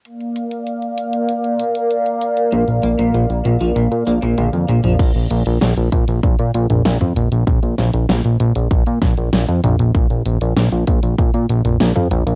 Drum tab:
CC |----------------|----------------|x---------------|----------------|
HH |xxxxxxxxxxxxxxxx|xxxxxxxxxxxxxxxx|xxxxxxxxxxxxxxxx|xxxxxxxxxxxxxxxx|
SD |----------------|----------------|----o-------o---|--o-o-----o-o---|
T1 |----------------|------------oo--|----------------|----------------|
T2 |----------------|---------------o|-----------o-o--|--------------o-|
BD |----------------|----------------|o-----o-o-------|o-------o-o-----|

CC |----------------|
HH |xxxxxxxxxxxxxxxx|
SD |----o-------o---|
T1 |----------------|
T2 |-----------o-o--|
BD |o-----o-o-------|